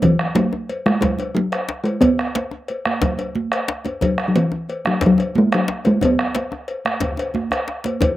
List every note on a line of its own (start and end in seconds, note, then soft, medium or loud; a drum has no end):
0.02 0.36 E3 medium
0.02 bombo low medium
0.02 cowbell medium
0.02 djembe slap soft
0.02 djembe bass medium
0.02 low conga medium
0.19 bombo rim medium
0.35 0.85 F#3 medium
0.35 cowbell soft
0.35 djembe slap medium
0.35 high conga medium
0.53 djembe slap soft
0.53 djembe tone medium
0.69 cowbell soft
0.69 high conga soft
0.86 1.00 G#3 medium
0.86 bombo rim medium
0.86 djembe slap soft
0.86 high conga medium
1.01 1.36 G#3 medium
1.01 bombo rim soft
1.01 bombo low medium
1.01 cowbell soft
1.01 djembe slap medium
1.01 djembe bass medium
1.01 low conga medium
1.19 cowbell soft
1.19 djembe tone soft
1.35 1.83 F#3 medium
1.35 djembe slap soft
1.35 high conga medium
1.52 bombo rim medium
1.52 cowbell soft
1.69 djembe slap medium
1.84 2.02 G#3 medium
1.84 cowbell soft
2.01 3.01 B3 medium
2.01 bombo low medium
2.01 cowbell medium
2.01 djembe slap soft
2.01 djembe bass medium
2.01 low conga medium
2.19 bombo rim medium
2.35 cowbell soft
2.35 djembe slap medium
2.35 high conga medium
2.51 djembe slap soft
2.51 djembe tone soft
2.68 cowbell soft
2.68 high conga soft
2.85 bombo rim medium
2.85 djembe slap soft
2.85 high conga medium
3.02 bombo rim soft
3.02 bombo low medium
3.02 cowbell soft
3.02 djembe slap medium
3.02 djembe bass medium
3.02 low conga medium
3.19 cowbell soft
3.19 djembe tone medium
3.35 djembe slap soft
3.35 high conga medium
3.52 bombo rim medium
3.52 cowbell soft
3.68 djembe slap medium
3.85 cowbell soft
3.85 djembe tone medium
3.85 high conga soft
4.01 4.28 F#3 medium
4.01 bombo low medium
4.01 cowbell medium
4.01 djembe slap soft
4.01 djembe bass medium
4.01 low conga medium
4.18 bombo rim medium
4.28 4.38 F#3 medium
4.36 4.88 E3 medium
4.36 cowbell soft
4.36 high conga medium
4.52 djembe slap soft
4.52 djembe tone medium
4.69 cowbell soft
4.69 high conga soft
4.85 5.03 F#3 medium
4.85 bombo rim medium
4.85 djembe slap soft
4.85 high conga soft
5.01 bombo rim soft
5.01 bombo low loud
5.01 cowbell soft
5.01 djembe slap medium
5.01 djembe bass medium
5.01 low conga medium
5.06 5.40 F#3 medium
5.18 cowbell soft
5.18 djembe tone medium
5.35 5.56 G#3 medium
5.35 djembe slap soft
5.35 high conga medium
5.52 5.86 F#3 medium
5.52 bombo rim medium
5.52 cowbell soft
5.68 djembe slap medium
5.85 6.06 G#3 medium
5.85 cowbell soft
5.85 djembe tone medium
5.85 high conga soft
6.01 7.03 B3 medium
6.01 bombo low loud
6.01 cowbell medium
6.01 djembe bass medium
6.01 low conga medium
6.19 bombo rim medium
6.35 cowbell soft
6.35 djembe slap medium
6.35 high conga medium
6.52 bombo rim soft
6.52 djembe slap soft
6.52 djembe tone medium
6.68 cowbell soft
6.85 bombo rim medium
6.85 djembe slap soft
6.85 high conga soft
7.00 bombo low loud
7.00 cowbell soft
7.00 djembe slap medium
7.00 high conga soft
7.00 djembe bass medium
7.00 low conga medium
7.17 bombo rim soft
7.17 cowbell soft
7.17 djembe tone medium
7.34 bombo rim soft
7.34 high conga medium
7.34 djembe bass soft
7.51 bombo rim medium
7.51 cowbell soft
7.51 high conga soft
7.51 djembe bass soft
7.68 bombo rim soft
7.68 djembe slap medium
7.84 cowbell soft
7.84 djembe slap medium
7.84 high conga soft
8.01 bombo low loud
8.01 cowbell medium
8.01 djembe slap soft
8.01 djembe bass medium
8.01 low conga medium